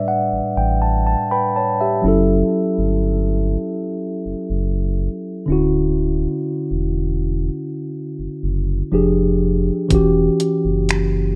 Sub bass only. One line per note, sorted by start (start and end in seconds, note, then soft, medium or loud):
0.32 0.42 A1 soft
0.57 1.16 A1 medium
2.04 2.43 F#1 loud
2.78 3.57 G1 medium
4.26 4.35 F#1 soft
4.50 5.09 F#1 medium
5.48 6.27 D1 loud
6.71 7.50 E1 medium
8.19 8.29 F#1 soft
8.43 8.83 F#1 medium
8.92 9.72 F1 loud
9.90 10.30 E1 loud
10.65 11.36 F#1 medium